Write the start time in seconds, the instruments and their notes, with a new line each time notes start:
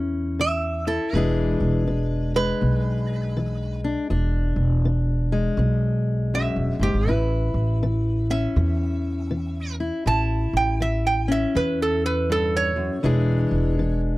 Already playing: upright bass E2, steel-string acoustic guitar E3 C#4 E4
0.39 steel-string acoustic guitar E3, resonator guitar played with a steel bar E5
0.87 steel-string acoustic guitar E4, resonator guitar played with a steel bar A4
1.13 upright bass E1, steel-string acoustic guitar E2 E3 G#3 D4 G#4, resonator guitar played with a steel bar B4
1.60 upright bass E1
1.88 steel-string acoustic guitar E3
2.36 steel-string acoustic guitar G#3, resonator guitar played with a steel bar B4
2.61 upright bass B1, steel-string acoustic guitar B2
3.37 steel-string acoustic guitar E3
3.84 steel-string acoustic guitar D4
4.10 upright bass E1, steel-string acoustic guitar E2 D4
4.56 upright bass E1
4.85 steel-string acoustic guitar E3
5.32 steel-string acoustic guitar G#3
5.57 upright bass B1, steel-string acoustic guitar B2
6.34 steel-string acoustic guitar F#2, resonator guitar played with a steel bar E5
6.56 upright bass E1
6.79 upright bass F#1, steel-string acoustic guitar G#2, resonator guitar played with a steel bar G4
6.94 upright bass G#1
7.07 upright bass A1, steel-string acoustic guitar A2 E4, resonator guitar played with a steel bar B4
7.54 upright bass A1
7.83 steel-string acoustic guitar E3
8.30 steel-string acoustic guitar C#4, resonator guitar played with a steel bar E5
8.56 upright bass E2, steel-string acoustic guitar E3
9.31 steel-string acoustic guitar E3
9.80 steel-string acoustic guitar E4
10.06 upright bass A1, steel-string acoustic guitar A2 E4, resonator guitar played with a steel bar A5
10.53 upright bass A1, resonator guitar played with a steel bar G5
10.80 steel-string acoustic guitar E3, resonator guitar played with a steel bar E5
11.07 resonator guitar played with a steel bar G5
11.28 steel-string acoustic guitar C#4, resonator guitar played with a steel bar E5
11.55 upright bass E2, steel-string acoustic guitar E3, resonator guitar played with a steel bar B4
11.82 resonator guitar played with a steel bar A4
12.06 resonator guitar played with a steel bar B4
12.30 steel-string acoustic guitar G2, resonator guitar played with a steel bar A4
12.57 resonator guitar played with a steel bar C#5
12.76 steel-string acoustic guitar F#2
13.03 upright bass E1, steel-string acoustic guitar E2 E3 G#3 D4 G#4
13.51 upright bass E1
13.79 steel-string acoustic guitar E3